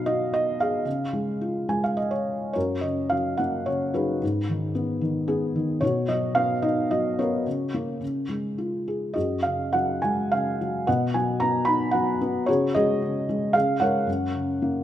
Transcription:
Already playing: B2 F#3 D#4 B4 F5
0.06 F#4 D#5
0.34 D#5
0.60 G#4 F5
0.85 C#3
1.13 G#3
1.41 F4
1.69 G#3 G#5
1.84 F5
1.97 D#5
2.11 C#5
2.53 F#2 F#4 A#4 C#5
2.81 C#3 D#5
3.10 F#3 F5
3.37 A#3 F#5
3.66 C#3 C#5
3.94 F#3 D#4 G#4 B4
4.22 G#2
4.49 D#3
4.75 B3
5.01 D#3
5.28 B3 G#4
5.55 D#3
5.81 B2 F#4 C#5
6.08 F#3 D#5
6.35 B3 F5
6.62 D#4 D#5
6.91 F#3 D#5
7.19 B3 F#4 A#4 C#5
7.47 C#3
7.74 A#3
8.01 C#3
8.29 G#3
8.58 F4
8.88 G#4
9.14 F#2 F#4 G#4 D#5
9.43 C#3 F5
9.73 F#3 F#5
10.02 G#3 G#5
10.32 C#3 F5
10.61 F#3
10.87 B2 B4 D#5 F#5
11.14 F#3 G#5
11.40 B3 A#5
11.65 D#4 B5
11.91 F#3 F#5
12.21 B3
12.46 C#3 F#4 G#4 C#5
12.75 G#3 F#4 G#4 D#5
13.02 C#3
13.29 G#3
13.53 C#3 G#4 F5
13.80 G#3 A#4 C#5 F#5
14.07 F#2
14.34 C#3
14.62 A#3

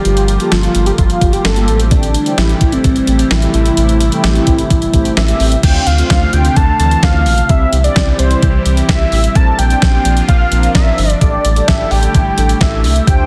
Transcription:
Already playing: D3 F3 G3 A#3 F4 G4
0.05 G1 A#3 F4 G4, closed hi-hat
0.17 closed hi-hat
0.28 closed hi-hat
0.40 A#3 F4 A4, closed hi-hat
0.52 G1 F4, snare, closed hi-hat
0.63 closed hi-hat
0.75 G1, closed hi-hat
0.86 G4, closed hi-hat
0.98 G1 F4, kick, closed hi-hat
1.10 closed hi-hat
1.21 G1 A#3 F4 G4, kick, closed hi-hat
1.33 G4, closed hi-hat
1.45 G1 A4, snare, closed hi-hat
1.56 A#3 F4 G4, closed hi-hat
1.68 A1 C3 E3 G3 A3 C4 E4 G4, closed hi-hat
1.80 closed hi-hat
1.91 D4, kick, closed hi-hat
2.03 closed hi-hat
2.14 closed hi-hat
2.26 A3 C4 G4, closed hi-hat
2.38 A1 E4, snare, closed hi-hat
2.49 closed hi-hat
2.61 A1, kick, closed hi-hat
2.72 C4, closed hi-hat
2.84 A1, kick, closed hi-hat
2.96 closed hi-hat
3.07 A1 A3 C4 G4, closed hi-hat
3.19 C4, closed hi-hat
3.31 A1 E4, snare, closed hi-hat
3.42 A3 C4 G4, closed hi-hat
3.54 A1 E4, closed hi-hat
3.66 closed hi-hat
3.77 A1 A3 C4 G4, closed hi-hat
3.89 closed hi-hat
4.01 closed hi-hat
4.12 A3 C4 G4, closed hi-hat
4.24 A1, snare, closed hi-hat
4.35 closed hi-hat
4.47 A1, kick, closed hi-hat
4.59 closed hi-hat
4.70 A1, kick, closed hi-hat
4.82 closed hi-hat
4.94 A1 A3 C4 G4, kick, closed hi-hat
5.05 closed hi-hat
5.17 A1 E5, snare, closed hi-hat
5.28 A3 C4 G4, closed hi-hat
5.40 A1, open hi-hat
5.52 closed hi-hat
5.63 D2 C3 D3 A3 C4 D4 F4 F5 G5, kick, closed hi-hat, crash
5.87 D2 F5, closed hi-hat
5.98 C4 D4 F4, closed hi-hat
6.10 D2 F5, kick, snare, closed hi-hat
6.33 D2 G5, closed hi-hat
6.45 closed hi-hat
6.56 D2 A5, kick, closed hi-hat
6.80 D2 E3 C4 D4 A5, closed hi-hat
6.91 closed hi-hat
7.03 D2 F5, kick, snare, closed hi-hat
7.26 A#1, open hi-hat
7.38 closed hi-hat
7.49 C2 C3 E3 G3 C4 E4 G4 E5, kick, closed hi-hat
7.73 C2, closed hi-hat
7.84 C4 E4 G4 D5, closed hi-hat
7.96 C2, kick, snare, closed hi-hat
8.19 C2 C5, closed hi-hat
8.31 closed hi-hat
8.43 C2, kick, closed hi-hat
8.66 C2 C4 E4 G4, closed hi-hat
8.77 closed hi-hat
8.89 C2 E5, kick, snare, closed hi-hat
9.12 A1, open hi-hat
9.24 closed hi-hat
9.35 A#1 F3 A#3 C4 D4 F4 A#4 A5, kick, closed hi-hat
9.59 A#1 G5, closed hi-hat
9.70 C4 D4 G4, closed hi-hat
9.82 A#1, kick, snare, closed hi-hat
10.05 A#1, closed hi-hat
10.17 closed hi-hat
10.28 A#1 F5, kick, closed hi-hat
10.52 A#1 C4 D4 A#4, closed hi-hat
10.63 closed hi-hat
10.75 A#1 E5, kick, snare, closed hi-hat
10.98 G1, open hi-hat
11.10 closed hi-hat
11.21 A1 D3 G3 A3 D4 E4 G4 A4 D5, kick, closed hi-hat
11.45 A1, closed hi-hat
11.56 D4 G4 A4, closed hi-hat
11.67 A1 E5, kick, snare, closed hi-hat
11.91 A1 G5, open hi-hat
12.03 closed hi-hat
12.15 A1, kick, closed hi-hat
12.38 A1 D4 G4 A4, closed hi-hat
12.49 closed hi-hat
12.61 A1 E5, kick, snare, closed hi-hat
12.84 C2, open hi-hat
12.96 closed hi-hat
13.07 D2 C3 F3 D4 F4 C5 G5, kick, closed hi-hat

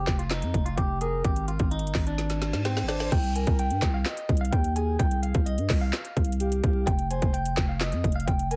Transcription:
Already playing: G4
0.07 F1, kick, snare, clap
0.19 F4, closed hi-hat
0.30 D#4, snare, clap, closed hi-hat
0.42 F2, closed hi-hat
0.54 F1, kick, closed hi-hat
0.66 F4, closed hi-hat
0.77 F1 G4, kick, closed hi-hat
1.01 G#4 A#4, closed hi-hat
1.24 G#1 G4, kick, closed hi-hat
1.36 closed hi-hat
1.48 F4, closed hi-hat
1.59 G#1, kick, closed hi-hat
1.71 D#4, closed hi-hat
1.79 G1, closed hi-hat
1.87 closed hi-hat
1.94 G#1, kick, snare, clap, open hi-hat
2.07 D4, closed hi-hat
2.18 snare, closed hi-hat, reverse cymbal
2.30 snare, closed hi-hat
2.42 snare, closed hi-hat
2.53 G#2, snare, closed hi-hat
2.65 C4, snare, closed hi-hat
2.77 snare
2.83 G#1
2.88 D4 C5, snare, closed hi-hat
3.00 snare
3.12 C2 G5, kick, closed hi-hat, crash
3.24 closed hi-hat
3.35 A#4 G#5, closed hi-hat
3.47 C2, kick, closed hi-hat
3.59 G5, closed hi-hat
3.70 G2, closed hi-hat
3.82 C2, kick, snare, clap, closed hi-hat
3.94 F5
4.05 D#5, snare, clap, closed hi-hat
4.17 closed hi-hat
4.29 C2, kick, closed hi-hat
4.37 F5, closed hi-hat
4.45 closed hi-hat
4.52 D#2 G5, kick, closed hi-hat
4.64 closed hi-hat
4.76 G#4 G#5, closed hi-hat
4.99 C2 G5, kick, closed hi-hat
5.11 closed hi-hat
5.23 F5, closed hi-hat
5.34 C2, kick, closed hi-hat
5.46 D#5, closed hi-hat
5.58 G2, closed hi-hat
5.70 C2, kick, snare, clap, open hi-hat
5.81 F5
5.93 snare, clap, closed hi-hat
6.05 closed hi-hat
6.17 C2, kick, closed hi-hat
6.25 closed hi-hat
6.32 closed hi-hat
6.40 G4, closed hi-hat
6.52 closed hi-hat
6.64 C2 G4, kick, closed hi-hat
6.87 F1 G5, kick, closed hi-hat
6.99 closed hi-hat
7.10 C5 G#5, closed hi-hat
7.22 F1, kick, closed hi-hat
7.34 G5, closed hi-hat
7.45 closed hi-hat
7.57 F1, kick, snare, clap, closed hi-hat
7.69 F5
7.80 D#5, snare, clap, closed hi-hat
7.92 F2, closed hi-hat
8.04 F1, kick, closed hi-hat
8.12 F5, closed hi-hat
8.20 closed hi-hat
8.27 F1 G5, kick, closed hi-hat
8.39 closed hi-hat
8.51 A#4 G#5, closed hi-hat

